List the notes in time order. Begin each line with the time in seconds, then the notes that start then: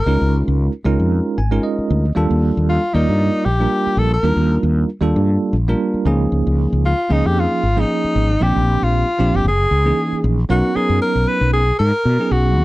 Already playing: A#4
0.06 C#2 G#3 C#4 D#4 F4 A#4
0.21 C#2
0.48 C#2
0.84 C#2 G#3 C#4 D#4 F4 A#4
0.99 F2
1.38 G#1 G#5
1.51 G#3 C#4 D#4 F4 A#4
1.63 D#5
1.78 muted fretless electric bass stroke
1.90 D2
2.15 D#2 G3 A#3 D4 F4 A4
2.30 D#2
2.57 D#2
2.69 F4
2.93 D#2 G3 A#3 D#4 F4 A#4 D5
3.09 G2
3.45 A#1 G4
3.59 G3 A#3 D4 F4 A#4
3.87 muted fretless electric bass stroke
3.97 A#1 A4
4.14 A#4
4.23 D#2 G3 A#3 D4 F4 A#4
4.37 D#2
4.63 D#2
5.01 D#2 G3 A#3 D4 F4 A4
5.16 G2
5.53 A#1
5.68 G3 A#3 D4 F4 A#4
5.94 muted fretless electric bass stroke
6.05 C#2 F3 A#3 C#4 D#4 G#4
6.32 C#2
6.47 C#2
6.73 C#2
6.86 F4
7.09 C#2 F3 A#3 C#4 D#4 G#4
7.26 F2 G4
7.40 F4
7.63 G#1
7.76 F3 A#3 C#4 D#4 G#4
8.04 muted fretless electric bass stroke
8.16 G#1
8.40 A#1 F3 A#3 C4 D4 G4
8.56 A#1
8.82 A#1 F4
9.18 A#1 F3 A#3 C4 D4 G4
9.34 G1 G4
9.45 F#1 G#4
9.71 C#2
9.85 E3 A#3 C#4 D#4 G#4
10.12 muted fretless electric bass stroke
10.24 A#1
10.49 B1 F#3 B3 C#4 D#4 F#4 A#4
10.75 F#3 B3 C#4 D#4 G#4 A#4, muted fretless electric bass stroke
10.90 F#2
11.02 A#4
11.15 B1
11.28 B4
11.41 B1
11.53 G#4
11.79 G#2 A#4
12.05 B2
12.19 F#3 B3 C#4 D#4 G#4
12.31 B1 F#4
12.58 D#2